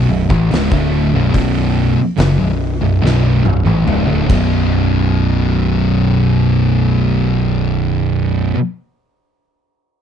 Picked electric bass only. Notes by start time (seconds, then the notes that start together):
0.09 B0
0.30 A1
0.51 C#1
0.72 D1
1.14 B0
1.34 B0
1.97 muted picked electric bass stroke
2.18 F#1
2.40 B0
2.81 B0
3.02 B0
3.46 B0
3.66 A1
3.87 C#1
4.07 D1
4.30 B0